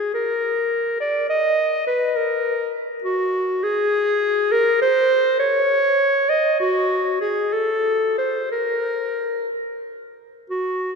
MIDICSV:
0, 0, Header, 1, 2, 480
1, 0, Start_track
1, 0, Tempo, 580271
1, 1070, Time_signature, 6, 3, 24, 8
1, 2513, Tempo, 594059
1, 5393, Tempo, 624350
1, 6353, Tempo, 660793
1, 8273, Tempo, 613497
1, 8633, End_track
2, 0, Start_track
2, 0, Title_t, "Clarinet"
2, 0, Program_c, 0, 71
2, 0, Note_on_c, 0, 68, 61
2, 103, Note_off_c, 0, 68, 0
2, 115, Note_on_c, 0, 70, 65
2, 819, Note_off_c, 0, 70, 0
2, 828, Note_on_c, 0, 74, 69
2, 1063, Note_off_c, 0, 74, 0
2, 1068, Note_on_c, 0, 75, 76
2, 1537, Note_off_c, 0, 75, 0
2, 1547, Note_on_c, 0, 71, 69
2, 1785, Note_on_c, 0, 70, 59
2, 1798, Note_off_c, 0, 71, 0
2, 2290, Note_off_c, 0, 70, 0
2, 2513, Note_on_c, 0, 66, 72
2, 2994, Note_on_c, 0, 68, 73
2, 3006, Note_off_c, 0, 66, 0
2, 3710, Note_on_c, 0, 70, 79
2, 3722, Note_off_c, 0, 68, 0
2, 3945, Note_off_c, 0, 70, 0
2, 3949, Note_on_c, 0, 72, 86
2, 4414, Note_off_c, 0, 72, 0
2, 4418, Note_on_c, 0, 73, 80
2, 5143, Note_on_c, 0, 75, 75
2, 5155, Note_off_c, 0, 73, 0
2, 5384, Note_off_c, 0, 75, 0
2, 5389, Note_on_c, 0, 66, 79
2, 5851, Note_off_c, 0, 66, 0
2, 5861, Note_on_c, 0, 68, 63
2, 6107, Note_on_c, 0, 69, 68
2, 6119, Note_off_c, 0, 68, 0
2, 6588, Note_off_c, 0, 69, 0
2, 6592, Note_on_c, 0, 72, 61
2, 6829, Note_off_c, 0, 72, 0
2, 6836, Note_on_c, 0, 70, 67
2, 7541, Note_off_c, 0, 70, 0
2, 8278, Note_on_c, 0, 66, 66
2, 8611, Note_off_c, 0, 66, 0
2, 8633, End_track
0, 0, End_of_file